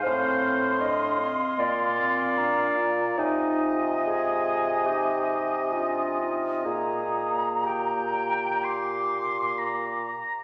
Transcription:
<<
  \new Staff \with { instrumentName = "Flute" } { \time 4/4 \key aes \lydian \tempo 4 = 70 c'''2. bes''4 | aes''2.~ aes''8 r8 | bes''2 d'''4. r8 | }
  \new Staff \with { instrumentName = "Oboe" } { \time 4/4 \key aes \lydian f''2.~ f''8 r8 | ees''1~ | ees''4 g''4 c'''4 bes''4 | }
  \new Staff \with { instrumentName = "Clarinet" } { \time 4/4 \key aes \lydian c''4 ees''4 d''2 | ees'8 r8 aes'4 g'4 f'4 | aes'4 g'2~ g'8 r8 | }
  \new Staff \with { instrumentName = "French horn" } { \time 4/4 \key aes \lydian c'4 d'8 c'8 bes8 c'8 d'8 f'8~ | f'2 ees'4 d'8 ees'8 | bes2.~ bes8 r8 | }
  \new Staff \with { instrumentName = "Bassoon" } { \clef bass \time 4/4 \key aes \lydian a,4. r8 bes,2 | c1 | bes,2.~ bes,8 r8 | }
>>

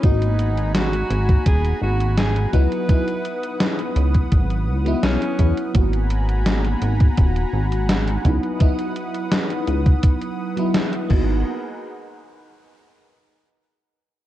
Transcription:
<<
  \new Staff \with { instrumentName = "Analog synth pad" } { \time 4/4 \key gis \minor \tempo 4 = 84 << { <gis'' ais'' b''>2.~ <gis'' ais'' b''>8 <b' dis'''>8~ | <b' dis'''>1 | <gis'' ais'' b''>2.~ <gis'' ais'' b''>8 <b' dis'''>8~ | <b' dis'''>2.~ <b' dis'''>8 <dis' gis' ais' b' fis''>8 |
r1 | } \\ { fis''1~ | fis''1 | fis''1~ | fis''2.~ fis''8 r8 |
r1 | } >> }
  \new Staff \with { instrumentName = "Alto saxophone" } { \time 4/4 \key gis \minor dis'4 fis'4 gis'8 fis'8 gis'8 b'8~ | b'4. r4. cis'4 | r1 | r1 |
r1 | }
  \new Staff \with { instrumentName = "FM electric piano" } { \time 4/4 \key gis \minor <ais b dis' fis'>2.~ <ais b dis' fis'>8 <fis b dis' e'>8 | <fis b dis' e'>2~ <fis b dis' e'>8. <fis b dis' e'>4~ <fis b dis' e'>16 | <ais b dis' fis'>2.~ <ais b dis' fis'>8 <fis b dis' e'>8 | <fis b dis' e'>2~ <fis b dis' e'>8. <fis b dis' e'>8. <ais b dis' fis'>8 |
r1 | }
  \new Staff \with { instrumentName = "Analog synth bass" } { \clef bass \time 4/4 \key gis \minor gis,,4. gis,,8 dis,,8 gis,,4 cis,8 | r4. cis,8 gis,,8 cis,8 b,,8 e,8 | gis,,4. gis,,8 dis,,8 gis,,4 cis,8 | r4. cis,8 r4. gis,,8 |
r1 | }
  \new DrumStaff \with { instrumentName = "Drums" } \drummode { \time 4/4 <hh bd>16 hh16 hh16 hh16 <hh sn>16 hh16 hh16 <hh bd>16 <hh bd>16 hh8 hh16 <hh sn>16 hh16 <hh bd>16 hh16 | <hh bd>16 hh16 hh16 hh16 <hh sn>16 hh16 hh16 <hh bd>16 <hh bd>16 hh8 hh16 <hh sn>16 hh16 <hh bd>16 hh16 | <hh bd>16 hh16 hh16 hh16 <hh sn>16 hh16 hh16 <hh bd>16 <hh bd>16 hh8 hh16 <hh sn>16 hh16 <hh bd>16 hh16 | <hh bd>16 hh16 hh16 hh16 <hh sn>16 hh16 hh16 <hh bd>16 <hh bd>16 hh8 hh16 <hh sn>16 hh16 <cymc bd>8 |
r4 r4 r4 r4 | }
>>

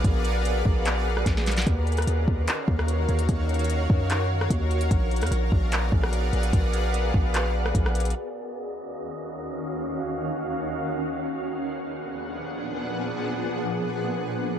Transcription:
<<
  \new Staff \with { instrumentName = "Ambient pad" } { \time 4/4 \key ees \minor \tempo 4 = 148 <aes' bes' ces'' d'' f'' ges''>1 | <ees ges' bes' des'' f''>1~ | <ees ges' bes' des'' f''>1 | <aes' ces'' d'' f'' ges''>1~ |
<aes' ces'' d'' f'' ges''>1 | <ees, ees des' ges' f''>1~ | <ees, ees des' ges' f''>1 | <bes, f ces' d' aes' ges''>1~ |
<bes, f ces' d' aes' ges''>1 | }
  \new Staff \with { instrumentName = "Synth texture" } { \time 4/4 \key ees \minor << { <ces' d''>1 | <des' ees''>1~ | <des' ees''>1 | <ces' ges' d''>1~ |
<ces' ges' d''>1 | <des' ees''>1~ | <des' ees''>1 | <d' aes' bes' ges''>1~ |
<d' aes' bes' ges''>1 | } \\ { <ges' aes'>1~ | <ges' aes'>1~ | <ges' aes'>1 | aes'1~ |
aes'1 | ges'1~ | ges'1 | ces''1~ |
ces''1 | } >> }
  \new Staff \with { instrumentName = "808-style bass" } { \clef bass \time 4/4 \key ees \minor bes,,4. bes,,4. bes,,4 | ees,4 ees,8 ees,8 r8 ees,4 ees,8 | ees,4. ges,4. ees,4 | bes,,8. f,16 bes,,8 bes,,4 bes,,4 bes,,8 |
bes,,4. bes,,4. bes,,4 | r1 | r1 | r1 |
r1 | }
  \new DrumStaff \with { instrumentName = "Drums" } \drummode { \time 4/4 <hh bd>8 hh8 hh8 bd8 <hc hh>8. ss16 <hh bd sn>16 sn16 <hh sn>32 hh32 <hh sn>32 hh32 | <hh bd>8 hh32 hh32 <hh ss>32 hh32 hh8 bd8 <hc hh>8 bd16 ss16 hh8 hh16 hh16 | <hh bd>8 hh32 hh32 hh32 hh32 hh8 bd8 <hc hh>8. ss16 <hh bd>8 hh16 hh16 | <hh bd>8 hh32 hh32 <hh ss>32 hh32 hh8 bd8 <hc hh>8 bd16 ss16 hh8 hh16 hh16 |
<hh bd>8 hh8 hh8 bd8 <hc hh>8. ss16 <hh bd>16 ss16 hh32 hh32 hh32 hh32 | r4 r4 r4 r4 | r4 r4 r4 r4 | r4 r4 r4 r4 |
r4 r4 r4 r4 | }
>>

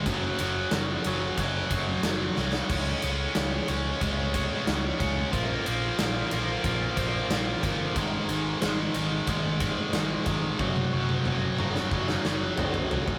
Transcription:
<<
  \new Staff \with { instrumentName = "Overdriven electric guitar" } { \clef bass \time 4/4 \key ges \lydian \tempo 4 = 91 <ges, des ges>8 <ges, des ges>8 <ges, des ges>8 <ges, des ges>8 <ges, des ges>8 <ges, des ges>8 <ges, des ges>8 <ges, des ges>8 | <des aes des'>8 <des aes des'>8 <des aes des'>8 <des aes des'>8 <des aes des'>8 <des aes des'>8 <des aes des'>8 <des aes des'>8 | <bes, f bes>8 <bes, f bes>8 <bes, f bes>8 <bes, f bes>8 <bes, f bes>8 <bes, f bes>8 <bes, f bes>8 <bes, f bes>8 | <aes, ees aes>8 <aes, ees aes>8 <aes, ees aes>8 <aes, ees aes>8 <aes, ees aes>8 <aes, ees aes>8 <aes, ees aes>8 <aes, ees aes>8 |
<ges, des ges>8 <ges, des ges>8 <ges, des ges>8 <ges, des ges>8 <ges, des ges>8 <ges, des ges>8 <ges, des ges>8 <ges, des ges>8 | }
  \new Staff \with { instrumentName = "Fingered electric bass" } { \clef bass \time 4/4 \key ges \lydian ges,,8 ges,,8 ges,,8 ges,,8 ges,,8 ges,,8 ges,,8 c,8 | des,8 des,8 des,8 des,8 des,4 des,8 des,8 | bes,,8 bes,,8 bes,,8 bes,,8 bes,,8 bes,,8 bes,,8 g,,8 | aes,,8 aes,,8 aes,,8 aes,,8 aes,,4 aes,,8 aes,,8 |
ges,,8 ges,,8 ges,,8 ges,,8 ges,,8 ges,,8 ges,,8 c,8 | }
  \new DrumStaff \with { instrumentName = "Drums" } \drummode { \time 4/4 <bd cymr>8 cymr8 <cymr sn>8 cymr8 <bd cymr>8 <bd cymr>8 <cymr sn>8 sn16 sn16 | <cymc bd cymr>8 cymr8 <cymr sn>8 cymr8 <bd cymr>8 <bd cymr>8 <cymr sn>8 <bd cymr>8 | <bd cymr>8 cymr8 <cymr sn>8 cymr8 <bd cymr>8 <bd cymr>8 <cymr sn>8 <bd cymr>8 | <bd cymr>8 cymr8 <cymr sn>8 cymr8 <bd cymr>8 <bd cymr>8 <cymr sn>8 <bd cymr>8 |
<bd tommh>16 tommh8 tommh16 toml8 toml16 sn16 bd16 sn16 sn8 tomfh16 tomfh16 tomfh16 bd16 | }
>>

